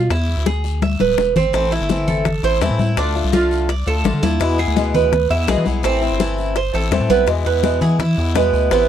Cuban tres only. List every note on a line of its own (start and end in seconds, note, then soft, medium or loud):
0.11 0.45 E4 medium
0.46 0.81 G#4 medium
0.82 1.00 E5 medium
1.00 1.35 B4 medium
1.36 1.71 C4 medium
1.72 2.07 E4 medium
2.08 2.42 A4 medium
2.44 2.61 C5 medium
2.62 2.97 E4 medium
2.98 3.32 D4 medium
3.34 3.68 F4 medium
3.70 3.87 D5 medium
3.87 4.22 A4 medium
4.23 4.58 E4 loud
4.59 4.94 G#4 medium
4.94 5.29 B4 medium
5.30 5.48 E5 medium
5.48 5.83 G#4 medium
5.85 6.19 C4 medium
6.21 6.55 E4 medium
6.56 6.74 C5 medium
6.75 7.09 A4 medium
7.10 7.27 B3 medium
7.46 7.81 B4 medium
7.82 7.99 G#4 medium
8.00 8.35 E4 medium
8.36 8.70 B4 medium
8.71 8.88 B3 medium